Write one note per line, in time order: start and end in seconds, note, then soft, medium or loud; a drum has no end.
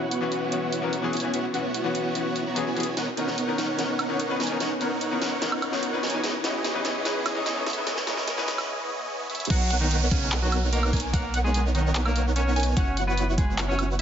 0.00 1.11 B3 medium
0.00 1.11 E4 medium
0.00 1.11 F#4 medium
0.00 1.11 C#5 medium
0.00 1.11 F#5 loud
0.00 riser medium
0.11 closed hi-hat medium
0.21 0.49 E3 loud
0.21 0.50 B3 medium
0.21 0.50 C#4 medium
0.21 0.50 F#4 loud
0.32 closed hi-hat medium
0.51 0.80 E3 medium
0.51 0.80 B3 medium
0.51 0.81 C#4 medium
0.51 0.81 F#4 medium
0.51 closed hi-hat medium
0.72 closed hi-hat medium
0.82 0.91 E3 medium
0.82 0.91 B3 medium
0.82 0.92 C#4 medium
0.82 0.92 A#4 loud
0.93 closed hi-hat medium
1.02 1.11 E3 loud
1.02 1.12 B3 medium
1.02 1.12 C#4 medium
1.02 1.12 G#4 loud
1.13 1.31 B3 medium
1.13 1.31 E4 medium
1.13 1.31 F#4 medium
1.13 1.31 C#5 medium
1.13 1.31 G#5 loud
1.13 closed hi-hat soft
1.17 closed hi-hat medium
1.20 1.51 E3 medium
1.20 1.52 B3 medium
1.20 1.52 C#4 medium
1.20 closed hi-hat medium
1.25 1.52 F#4 medium
1.34 1.46 B3 medium
1.34 1.46 E4 medium
1.34 1.46 F#4 medium
1.34 1.46 C#5 medium
1.34 1.46 F#5 loud
1.34 closed hi-hat medium
1.53 1.62 E3 medium
1.53 1.63 B3 medium
1.53 2.44 B3 medium
1.53 1.63 C#4 medium
1.53 2.44 E4 medium
1.53 2.44 F#4 medium
1.53 1.64 F#4 medium
1.53 2.44 C#5 medium
1.53 2.44 F#5 loud
1.53 closed hi-hat medium
1.74 closed hi-hat medium
1.84 2.12 E3 loud
1.84 2.13 B3 medium
1.84 2.13 C#4 medium
1.84 2.14 F#4 loud
1.95 closed hi-hat medium
2.14 2.43 E3 medium
2.14 2.44 B3 medium
2.14 2.44 C#4 medium
2.14 2.44 F#4 medium
2.14 closed hi-hat medium
2.36 closed hi-hat medium
2.46 2.64 B3 medium
2.46 2.64 E4 medium
2.46 2.64 F#4 medium
2.46 2.64 C#5 medium
2.46 2.64 A#5 medium
2.55 2.65 E3 loud
2.55 2.65 B3 medium
2.55 2.65 C#4 medium
2.55 2.66 G#4 loud
2.55 closed hi-hat medium
2.66 2.95 B3 medium
2.66 2.95 E4 medium
2.66 2.95 F#4 medium
2.66 2.95 C#5 medium
2.66 2.95 G#5 medium
2.76 2.85 E3 medium
2.76 2.85 B3 medium
2.76 2.86 C#4 medium
2.76 2.86 G#4 medium
2.76 closed hi-hat soft
2.80 closed hi-hat medium
2.83 closed hi-hat medium
2.97 3.09 B3 loud
2.97 3.09 D#4 medium
2.97 3.09 A#4 medium
2.97 3.09 C#5 medium
2.97 3.09 F#5 loud
2.97 snare soft
2.97 closed hi-hat medium
3.16 3.26 D#3 medium
3.16 3.26 B3 medium
3.16 4.38 B3 medium
3.16 3.26 C#4 medium
3.16 4.38 D#4 medium
3.16 4.37 A#4 medium
3.16 3.27 A#4 medium
3.16 4.38 C#5 medium
3.16 4.38 F#5 loud
3.16 closed hi-hat medium
3.28 snare soft
3.38 closed hi-hat medium
3.47 3.76 D#3 medium
3.47 3.76 B3 medium
3.47 3.76 C#4 medium
3.47 3.77 A#4 loud
3.58 snare medium
3.58 closed hi-hat medium
3.78 4.07 D#3 medium
3.78 4.07 B3 medium
3.78 4.07 C#4 medium
3.78 4.08 A#4 medium
3.78 snare medium
3.78 closed hi-hat medium
3.99 closed hi-hat medium
3.99 high woodblock medium
4.09 4.18 D#3 medium
4.09 4.18 B3 medium
4.09 4.18 C#4 medium
4.09 4.19 C#5 loud
4.20 closed hi-hat medium
4.29 4.38 D#3 loud
4.29 4.38 B3 medium
4.29 4.39 C#4 medium
4.29 4.39 B4 loud
4.40 4.58 B3 medium
4.40 4.58 D#4 medium
4.40 4.58 A#4 medium
4.40 4.58 C#5 medium
4.40 4.58 G#5 loud
4.40 snare medium
4.40 closed hi-hat soft
4.43 closed hi-hat medium
4.47 4.78 D#3 medium
4.47 4.78 B3 medium
4.47 4.78 C#4 medium
4.47 closed hi-hat medium
4.51 4.79 A#4 medium
4.60 4.72 B3 medium
4.60 4.72 D#4 medium
4.60 4.72 A#4 medium
4.60 4.72 C#5 medium
4.60 4.72 F#5 loud
4.60 snare medium
4.60 closed hi-hat medium
4.80 4.89 D#3 medium
4.80 4.89 B3 medium
4.80 6.01 B3 medium
4.80 4.90 C#4 medium
4.80 6.01 D#4 medium
4.80 6.01 A#4 medium
4.80 4.90 A#4 medium
4.80 6.01 C#5 medium
4.80 6.01 F#5 loud
4.80 closed hi-hat medium
5.01 closed hi-hat medium
5.11 5.39 D#3 loud
5.11 5.39 B3 medium
5.11 5.40 C#4 medium
5.11 5.40 A#4 loud
5.22 snare medium
5.22 closed hi-hat medium
5.41 5.70 D#3 medium
5.41 5.70 B3 medium
5.41 5.70 C#4 medium
5.41 5.71 A#4 medium
5.41 snare medium
5.41 closed hi-hat medium
5.52 high woodblock medium
5.62 closed hi-hat medium
5.62 high woodblock medium
5.72 5.81 D#3 loud
5.72 5.81 B3 medium
5.72 5.82 C#4 medium
5.72 5.82 C#5 loud
5.72 snare medium
5.83 closed hi-hat medium
5.92 6.01 D#3 loud
5.92 6.02 B3 medium
5.92 6.02 C#4 medium
5.92 6.02 B4 loud
6.03 6.21 B3 medium
6.03 6.21 D#4 medium
6.03 6.21 A#4 medium
6.03 6.21 C#5 medium
6.03 6.21 G#5 loud
6.03 snare medium
6.03 closed hi-hat soft
6.07 closed hi-hat medium
6.10 6.41 E3 medium
6.10 6.42 C#4 medium
6.10 closed hi-hat medium
6.14 6.42 D#4 medium
6.14 6.42 B4 loud
6.24 6.36 B3 loud
6.24 6.36 E4 medium
6.24 6.36 G#4 medium
6.24 6.36 C#5 medium
6.24 6.36 D#5 loud
6.24 snare medium
6.24 closed hi-hat medium
6.43 6.52 E3 medium
6.43 7.64 B3 medium
6.43 6.53 C#4 medium
6.43 6.53 D#4 medium
6.43 7.64 E4 medium
6.43 7.64 G#4 medium
6.43 6.53 B4 medium
6.43 7.64 C#5 medium
6.43 7.64 D#5 loud
6.43 snare medium
6.43 closed hi-hat medium
6.64 snare medium
6.64 closed hi-hat medium
6.74 7.02 E3 loud
6.74 7.03 C#4 medium
6.74 7.03 D#4 medium
6.74 7.03 B4 loud
6.85 snare medium
6.85 closed hi-hat medium
7.04 7.33 E3 medium
7.04 7.33 C#4 medium
7.04 7.34 D#4 medium
7.04 7.34 B4 medium
7.04 snare medium
7.04 closed hi-hat medium
7.26 snare medium
7.26 closed hi-hat medium
7.26 high woodblock medium
7.35 7.44 E3 loud
7.35 7.44 C#4 medium
7.35 7.45 D#4 medium
7.35 7.45 D#5 loud
7.46 snare medium
7.46 closed hi-hat medium
7.55 7.64 E3 loud
7.55 7.65 C#4 medium
7.55 7.65 D#4 medium
7.55 7.65 C#5 loud
7.67 7.85 B3 loud
7.67 7.85 E4 medium
7.67 7.85 G#4 medium
7.67 7.85 C#5 medium
7.67 7.85 E5 loud
7.67 snare medium
7.67 closed hi-hat soft
7.70 closed hi-hat medium
7.73 8.04 E3 medium
7.73 8.05 C#4 medium
7.73 8.05 D#4 medium
7.73 closed hi-hat medium
7.78 8.05 B4 medium
7.87 7.99 B3 loud
7.87 7.99 E4 medium
7.87 7.99 G#4 medium
7.87 7.99 C#5 medium
7.87 7.99 D#5 loud
7.87 snare medium
7.87 closed hi-hat medium
7.97 snare medium
8.06 8.16 E3 medium
8.06 9.27 B3 medium
8.06 8.16 C#4 medium
8.06 8.16 D#4 medium
8.06 9.27 E4 medium
8.06 9.27 G#4 medium
8.06 8.17 B4 medium
8.06 9.27 C#5 medium
8.06 9.27 D#5 loud
8.06 snare loud
8.06 closed hi-hat medium
8.17 snare medium
8.28 snare medium
8.28 closed hi-hat medium
8.37 8.66 E3 loud
8.37 8.66 C#4 medium
8.37 8.66 D#4 medium
8.37 8.67 B4 loud
8.37 snare medium
8.48 snare loud
8.48 closed hi-hat medium
8.58 snare medium
8.58 high woodblock medium
8.69 swell medium
9.30 9.48 B3 medium
9.30 9.48 E4 medium
9.30 9.48 G#4 medium
9.30 9.48 C#5 medium
9.30 9.48 E5 loud
9.30 closed hi-hat medium
9.35 closed hi-hat medium
9.40 closed hi-hat medium
9.45 closed hi-hat medium
9.50 12.75 B1 medium
9.50 9.69 F#3 medium
9.50 9.62 B3 loud
9.50 9.62 D#4 medium
9.50 9.70 F#4 medium
9.50 9.62 A#4 medium
9.50 9.62 C#5 medium
9.50 9.62 F#5 loud
9.50 kick loud
9.50 closed hi-hat medium
9.50 crash loud
9.50 downlifter medium
9.70 10.91 B3 loud
9.70 10.91 D#4 medium
9.70 10.91 A#4 medium
9.70 10.91 C#5 medium
9.70 10.91 F#5 loud
9.70 10.91 F#5 medium
9.70 closed hi-hat medium
9.81 10.00 D#3 medium
9.81 10.00 D#4 medium
9.91 closed hi-hat medium
10.11 10.31 C#3 medium
10.11 10.31 C#4 medium
10.11 kick loud
10.11 closed hi-hat medium
10.32 clap loud
10.32 closed hi-hat medium
10.42 10.61 F#3 medium
10.42 10.61 F#4 medium
10.52 closed hi-hat medium
10.52 high woodblock medium
10.72 10.98 A#3 medium
10.72 10.98 A#4 medium
10.72 closed hi-hat medium
10.83 high woodblock medium
10.93 11.11 B3 medium
10.93 11.11 D#4 medium
10.93 11.11 A#4 medium
10.93 11.11 C#5 medium
10.93 11.11 G#5 loud
10.93 kick medium
10.93 closed hi-hat medium
10.97 closed hi-hat medium
11.00 closed hi-hat medium
11.13 11.33 A#3 medium
11.13 11.25 B3 loud
11.13 11.25 D#4 medium
11.13 11.25 A#4 medium
11.13 11.33 A#4 medium
11.13 11.25 C#5 medium
11.13 11.25 F#5 loud
11.13 kick loud
11.13 closed hi-hat medium
11.34 12.54 B3 medium
11.34 12.54 D#4 medium
11.34 12.54 A#4 medium
11.34 12.54 C#5 medium
11.34 12.54 F#5 loud
11.34 closed hi-hat medium
11.44 11.64 G#3 medium
11.44 11.64 G#4 medium
11.54 closed hi-hat medium
11.75 11.94 D#3 medium
11.75 11.94 D#4 medium
11.75 closed hi-hat medium
11.95 clap loud
11.95 closed hi-hat medium
12.05 12.25 A#3 medium
12.05 12.25 A#4 medium
12.05 high woodblock medium
12.16 closed hi-hat medium
12.36 12.62 C#4 medium
12.36 12.62 C#5 medium
12.36 closed hi-hat medium
12.56 12.74 B3 medium
12.56 12.74 D#4 medium
12.56 12.74 A#4 medium
12.56 12.74 C#5 medium
12.56 12.74 G#5 loud
12.56 closed hi-hat soft
12.60 closed hi-hat medium
12.63 closed hi-hat medium
12.77 14.02 F#1 medium
12.77 12.89 B3 loud
12.77 12.96 C#4 medium
12.77 12.89 E4 medium
12.77 12.89 F#4 medium
12.77 12.89 C#5 medium
12.77 12.96 C#5 medium
12.77 12.89 F#5 loud
12.77 kick loud
12.77 closed hi-hat medium
12.97 14.02 B3 loud
12.97 14.02 E4 medium
12.97 14.02 F#4 medium
12.97 14.02 C#5 medium
12.97 14.02 F#5 loud
12.97 closed hi-hat medium
13.07 13.27 B3 medium
13.07 13.27 B4 medium
13.17 closed hi-hat medium
13.38 13.57 G#3 medium
13.38 13.57 G#4 medium
13.38 kick loud
13.38 closed hi-hat medium
13.58 clap loud
13.58 closed hi-hat medium
13.68 13.88 C#4 medium
13.68 13.88 C#5 medium
13.79 closed hi-hat medium
13.79 high woodblock medium